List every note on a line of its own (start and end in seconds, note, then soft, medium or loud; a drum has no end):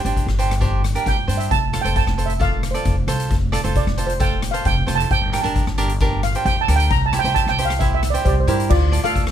0.00 0.35 G4 medium
0.05 0.25 G1 medium
0.05 0.26 D4 medium
0.05 0.26 G4 medium
0.05 0.26 C5 medium
0.05 closed hi-hat medium
0.17 kick medium
0.17 closed hi-hat medium
0.27 0.94 G1 medium
0.27 cross-stick medium
0.39 0.53 D4 medium
0.39 0.53 G4 medium
0.39 0.53 C5 loud
0.39 closed hi-hat medium
0.51 cross-stick medium
0.51 closed hi-hat medium
0.61 0.81 D4 medium
0.61 0.81 G4 medium
0.61 0.81 C5 medium
0.61 kick medium
0.61 closed hi-hat medium
0.84 cross-stick medium
0.84 closed hi-hat medium
0.95 1.16 D4 medium
0.95 1.16 G4 medium
0.95 1.16 A#4 medium
0.95 closed hi-hat medium
1.06 1.26 G1 medium
1.06 1.35 G5 medium
1.06 kick medium
1.06 closed hi-hat medium
1.28 1.48 G2 medium
1.28 1.51 D4 medium
1.28 1.51 G4 soft
1.28 1.51 C5 medium
1.28 closed hi-hat medium
1.37 1.51 E5 medium
1.37 closed hi-hat medium
1.51 1.80 F1 medium
1.51 1.79 A5 loud
1.51 kick loud
1.51 closed hi-hat medium
1.73 1.81 F4 medium
1.73 1.80 A4 medium
1.73 1.80 C5 medium
1.73 cross-stick medium
1.73 closed hi-hat medium
1.81 2.04 F1 medium
1.81 2.05 A4 medium
1.81 2.05 C5 medium
1.81 1.88 G5 medium
1.81 closed hi-hat medium
1.86 2.05 F4 medium
1.96 2.27 A5 medium
1.96 kick medium
1.96 closed hi-hat medium
2.07 2.75 F1 medium
2.07 cross-stick medium
2.18 2.32 F4 medium
2.18 2.32 A4 medium
2.18 2.32 C5 medium
2.18 closed hi-hat medium
2.26 2.40 E5 medium
2.26 closed hi-hat medium
2.39 2.61 F4 medium
2.39 2.61 A4 medium
2.39 2.61 D5 medium
2.39 2.72 F5 medium
2.39 kick loud
2.39 closed hi-hat medium
2.63 cross-stick medium
2.63 closed hi-hat medium
2.71 2.95 A4 medium
2.71 2.92 C5 medium
2.71 2.95 D5 medium
2.71 closed hi-hat medium
2.75 2.95 F4 medium
2.85 3.05 F1 loud
2.85 kick medium
2.85 closed hi-hat medium
3.07 3.27 C2 medium
3.07 3.35 F4 medium
3.07 3.35 A4 medium
3.07 3.35 C5 medium
3.07 cross-stick medium
3.07 closed hi-hat medium
3.20 closed hi-hat medium
3.31 3.60 F1 medium
3.31 kick loud
3.31 closed hi-hat medium
3.52 3.60 F4 medium
3.52 3.60 A4 medium
3.52 3.60 D5 medium
3.52 cross-stick medium
3.52 closed hi-hat medium
3.64 3.84 F1 medium
3.64 3.85 F4 medium
3.64 3.85 A4 medium
3.64 3.85 C5 medium
3.64 closed hi-hat medium
3.76 4.04 D5 medium
3.76 kick medium
3.76 closed hi-hat medium
3.87 4.54 F1 medium
3.87 cross-stick medium
3.97 4.12 F4 medium
3.97 4.12 A4 medium
3.97 4.12 C5 medium
3.97 closed hi-hat medium
4.07 4.22 C5 medium
4.07 closed hi-hat medium
4.20 4.41 F4 medium
4.20 4.41 A4 medium
4.20 4.41 C5 medium
4.20 4.52 G5 medium
4.20 kick medium
4.20 closed hi-hat medium
4.42 cross-stick medium
4.42 closed hi-hat medium
4.51 4.75 F4 medium
4.51 4.75 A4 medium
4.51 4.75 C5 medium
4.51 4.65 F5 medium
4.51 closed hi-hat medium
4.65 4.85 F1 loud
4.65 4.97 G5 medium
4.65 kick medium
4.65 closed hi-hat medium
4.87 5.07 F1 medium
4.87 5.10 F4 medium
4.87 5.10 A4 medium
4.87 5.10 C5 medium
4.87 cross-stick medium
4.87 closed hi-hat medium
4.95 5.11 A5 medium
5.00 closed hi-hat medium
5.11 5.40 G1 medium
5.11 5.39 G5 loud
5.11 kick loud
5.11 closed hi-hat medium
5.32 5.40 D4 medium
5.32 5.40 G4 medium
5.32 5.40 A#4 medium
5.32 cross-stick medium
5.32 closed hi-hat medium
5.41 5.64 G1 medium
5.41 5.64 D4 medium
5.41 5.64 G4 medium
5.41 5.65 A#4 medium
5.41 5.62 A5 medium
5.45 closed hi-hat medium
5.56 kick medium
5.56 closed hi-hat medium
5.67 6.34 G1 medium
5.67 cross-stick medium
5.78 5.92 D4 medium
5.78 5.92 G4 medium
5.78 5.92 A#4 loud
5.78 closed hi-hat medium
5.89 closed hi-hat medium
6.00 6.21 D4 medium
6.00 6.21 G4 medium
6.00 6.21 A#4 medium
6.00 kick loud
6.00 closed hi-hat medium
6.23 6.46 F5 medium
6.23 cross-stick medium
6.23 closed hi-hat medium
6.35 6.55 D4 medium
6.35 6.55 G4 medium
6.35 6.55 C5 medium
6.35 closed hi-hat medium
6.45 6.65 G1 loud
6.45 6.60 G5 medium
6.45 kick medium
6.45 closed hi-hat medium
6.61 6.76 A5 loud
6.68 6.87 D2 medium
6.68 6.91 D4 medium
6.68 6.91 G4 medium
6.68 6.91 A#4 medium
6.68 cross-stick medium
6.68 closed hi-hat medium
6.76 6.90 G5 medium
6.76 closed hi-hat medium
6.90 7.20 C2 medium
6.90 7.06 A#5 loud
6.90 kick loud
6.90 closed hi-hat medium
7.06 7.21 A5 medium
7.13 7.20 E4 medium
7.13 7.20 G4 medium
7.13 7.20 C5 medium
7.13 cross-stick medium
7.13 closed hi-hat medium
7.19 7.35 G5 loud
7.24 7.44 C2 medium
7.24 7.45 E4 medium
7.24 7.45 G4 medium
7.24 7.45 C5 medium
7.24 closed hi-hat medium
7.34 7.50 A5 loud
7.34 kick medium
7.34 closed hi-hat medium
7.47 8.14 C2 medium
7.47 7.64 G5 medium
7.47 cross-stick medium
7.59 7.72 E4 medium
7.59 7.72 G4 medium
7.59 7.72 C5 medium
7.59 closed hi-hat medium
7.65 7.72 F5 medium
7.70 cross-stick medium
7.70 closed hi-hat medium
7.79 8.01 E4 medium
7.79 8.01 G4 medium
7.79 8.01 C5 medium
7.79 7.93 E5 medium
7.79 kick loud
7.79 closed hi-hat medium
7.95 8.09 E5 medium
8.03 cross-stick medium
8.03 closed hi-hat medium
8.10 8.34 G4 medium
8.10 8.34 C5 medium
8.10 8.26 D5 medium
8.15 8.34 E4 medium
8.15 closed hi-hat medium
8.25 8.45 C2 loud
8.25 8.47 G4 medium
8.25 8.32 C5 medium
8.25 8.49 D5 medium
8.25 kick medium
8.25 closed hi-hat medium
8.40 8.47 C5 medium
8.47 8.67 G2 medium
8.47 8.70 E4 medium
8.47 8.69 E4 medium
8.47 8.70 G4 medium
8.47 8.70 A#4 medium
8.47 8.71 C5 medium
8.47 closed hi-hat medium
8.60 closed hi-hat medium
8.70 9.00 D2 medium
8.70 9.02 F4 medium
8.70 9.05 D5 loud
8.70 kick loud
8.70 crash loud
8.92 8.99 F4 medium
8.92 8.99 A4 medium
8.92 8.99 D5 medium
8.92 closed hi-hat medium
9.04 9.31 D2 medium
9.04 9.24 F4 medium
9.04 9.24 A4 medium
9.04 9.31 A4 medium
9.04 9.24 D5 medium
9.04 9.31 F5 loud
9.04 closed hi-hat medium
9.16 kick medium
9.16 closed hi-hat medium
9.27 cross-stick medium